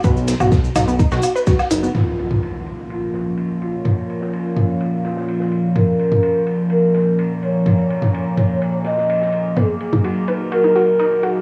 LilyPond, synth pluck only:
\new Staff \with { instrumentName = "Synth pluck" } { \time 4/4 \key bes \phrygian \tempo 4 = 126 b'16 r8 fis'16 r8 dis'16 b16 dis'16 fis'16 r16 b'16 fis'16 r16 dis'16 b16 | r1 | r1 | r1 |
r1 | b16 r8 dis'16 fis'16 r16 b'16 r16 fis'16 dis'16 fis'16 r16 dis'16 r16 fis'16 r16 | }